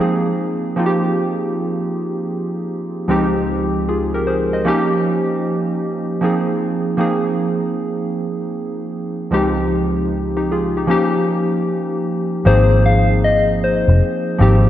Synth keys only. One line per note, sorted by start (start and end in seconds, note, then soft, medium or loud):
0.00 0.57 F3 medium
0.00 0.58 A#3 medium
0.00 0.58 C4 medium
0.00 0.59 D#4 medium
0.00 0.59 G#4 medium
0.76 1.88 F3 medium
0.76 1.88 A#3 medium
0.76 1.89 C4 medium
0.76 1.89 D#4 medium
0.76 0.86 F4 medium
0.86 1.93 G4 medium
3.07 3.68 C#2 medium
3.07 3.69 F3 medium
3.07 3.69 G#3 medium
3.07 3.69 C4 medium
3.07 3.70 D#4 medium
3.07 3.70 G4 medium
3.89 4.13 F4 soft
3.89 4.12 G#4 medium
4.14 4.27 G4 medium
4.14 4.27 A#4 medium
4.27 4.51 G#4 medium
4.27 4.51 C5 medium
4.53 4.90 C5 soft
4.53 4.90 D#5 medium
4.65 5.92 F3 medium
4.65 5.93 A#3 medium
4.65 5.93 C#4 medium
4.65 5.94 D#4 medium
4.65 5.94 G4 loud
6.21 6.81 F3 medium
6.21 6.81 A#3 medium
6.21 6.82 C4 medium
6.21 6.82 D#4 medium
6.21 6.83 G#4 medium
6.97 8.10 F3 medium
6.97 8.11 A#3 medium
6.97 8.11 C4 medium
6.97 8.12 D#4 medium
6.97 8.12 G#4 medium
9.31 9.91 C#2 medium
9.31 9.92 F3 medium
9.31 9.92 G#3 medium
9.31 9.92 C4 medium
9.31 9.73 D#4 medium
9.31 9.73 G4 medium
10.37 10.50 D#4 medium
10.37 10.50 G4 medium
10.52 10.75 F4 medium
10.52 10.75 G#4 medium
10.77 10.89 D#4 medium
10.77 10.90 G4 medium
10.87 12.15 F3 medium
10.87 12.16 A#3 medium
10.87 12.16 C#4 medium
10.87 12.17 D#4 medium
10.87 12.17 G4 loud
12.45 13.57 F3 medium
12.45 13.57 A#3 medium
12.45 13.58 C4 medium
12.45 13.58 D#4 medium
12.45 13.58 G#4 medium
14.38 14.70 F3 medium
14.38 14.70 A#3 medium
14.38 14.70 C4 medium
14.38 14.70 D#4 medium
14.38 14.70 G4 medium